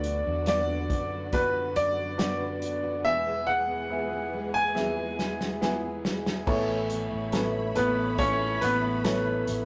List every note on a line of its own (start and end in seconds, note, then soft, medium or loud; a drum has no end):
0.00 0.22 D2 medium
0.00 0.86 D3 medium
0.00 1.32 D3 medium
0.00 3.01 D3 medium
0.00 3.01 F#3 medium
0.00 0.43 B3 medium
0.00 0.90 B3 medium
0.00 6.43 B3 medium
0.00 0.43 D4 medium
0.00 0.43 F#4 medium
0.00 3.01 F#4 medium
0.00 0.43 D5 medium
0.00 0.44 D5 medium
0.00 closed hi-hat medium
0.04 0.47 F#4 medium
0.26 0.90 E2 medium
0.26 0.68 D4 medium
0.46 1.29 B3 medium
0.46 1.29 D4 medium
0.46 1.29 F#4 medium
0.46 1.11 F#4 medium
0.46 1.29 D5 medium
0.46 1.36 D5 medium
0.46 snare medium
0.46 closed hi-hat medium
0.69 1.97 D4 medium
0.90 1.72 F#2 medium
0.90 1.55 B3 medium
0.90 kick medium
0.90 closed hi-hat medium
1.12 1.75 F#4 medium
1.33 3.13 D3 medium
1.33 2.15 B3 medium
1.33 2.15 D4 medium
1.33 2.15 F#4 medium
1.33 1.73 B4 medium
1.33 2.15 D5 medium
1.33 kick medium
1.33 closed hi-hat medium
1.55 2.62 B3 medium
1.76 3.01 F#2 medium
1.76 2.18 F#4 medium
1.76 3.09 D5 medium
1.76 closed hi-hat medium
1.98 2.39 D4 medium
2.18 3.00 B3 medium
2.18 3.00 D4 medium
2.18 3.00 F#4 medium
2.18 2.82 F#4 medium
2.18 3.00 D5 medium
2.18 snare loud
2.18 closed hi-hat medium
2.41 3.13 D4 medium
2.62 3.26 B3 medium
2.62 closed hi-hat medium
2.83 3.13 F#4 medium
3.04 4.75 E2 medium
3.04 4.29 B2 medium
3.04 6.44 E3 medium
3.04 6.44 G#3 medium
3.04 3.86 B3 medium
3.04 3.86 E4 medium
3.04 6.44 G#4 medium
3.04 3.86 G#4 medium
3.04 3.49 E5 medium
3.04 3.86 E5 medium
3.26 4.32 G#3 medium
3.47 3.89 G#4 medium
3.47 4.57 F#5 medium
3.69 4.11 B3 medium
3.90 4.71 B3 medium
3.90 4.71 E4 medium
3.90 4.72 G#4 medium
3.90 4.54 G#4 medium
3.90 4.72 E5 medium
4.12 5.40 B3 medium
4.33 4.97 G#3 medium
4.54 5.18 G#4 medium
4.54 5.36 G#5 loud
4.74 6.56 E2 medium
4.74 5.57 B3 medium
4.74 5.57 E4 medium
4.74 5.57 G#4 medium
4.74 5.57 E5 medium
4.74 snare medium
4.98 6.04 G#3 medium
5.19 5.61 G#4 medium
5.19 snare medium
5.41 5.83 B3 medium
5.41 snare medium
5.61 6.43 B3 medium
5.61 6.43 E4 medium
5.61 6.43 G#4 medium
5.61 6.25 G#4 medium
5.61 6.43 E5 medium
5.61 snare medium
5.84 6.91 B3 medium
6.05 6.56 G#3 medium
6.05 snare medium
6.26 6.56 G#4 medium
6.26 snare medium
6.46 7.08 A1 medium
6.46 7.72 A2 medium
6.46 9.65 A2 medium
6.46 7.72 E3 medium
6.46 9.65 A3 medium
6.46 7.28 B3 medium
6.46 7.28 E4 medium
6.46 7.29 A4 medium
6.46 7.29 C#5 loud
6.46 9.65 C#5 medium
6.46 9.65 E5 medium
6.46 9.65 B5 medium
6.46 kick loud
6.46 crash medium
6.90 9.65 B3 medium
6.90 closed hi-hat medium
7.12 7.72 A1 medium
7.32 7.73 B3 medium
7.32 8.61 C#4 medium
7.32 7.73 E4 medium
7.32 7.74 A4 medium
7.32 7.74 B4 medium
7.32 snare medium
7.32 closed hi-hat medium
7.75 8.58 A1 medium
7.75 8.16 B3 medium
7.75 8.17 B3 medium
7.75 8.16 E4 medium
7.75 9.04 E4 medium
7.75 8.16 A4 medium
7.75 8.16 B4 medium
7.75 8.17 E5 medium
7.75 closed hi-hat medium
8.18 9.65 E3 medium
8.18 9.00 B3 medium
8.18 8.60 C#4 medium
8.18 9.00 E4 medium
8.18 9.00 A4 medium
8.18 8.63 C#5 medium
8.18 9.01 C#5 medium
8.18 kick medium
8.18 closed hi-hat medium
8.61 9.43 A1 loud
8.61 9.65 B3 medium
8.61 9.47 C#4 medium
8.61 9.65 B4 medium
8.61 closed hi-hat medium
9.04 9.65 B3 medium
9.04 9.65 E4 medium
9.04 9.65 A4 medium
9.04 9.65 C#5 medium
9.04 snare loud
9.04 closed hi-hat medium
9.47 9.65 A1 medium
9.47 9.65 C#4 medium
9.47 closed hi-hat medium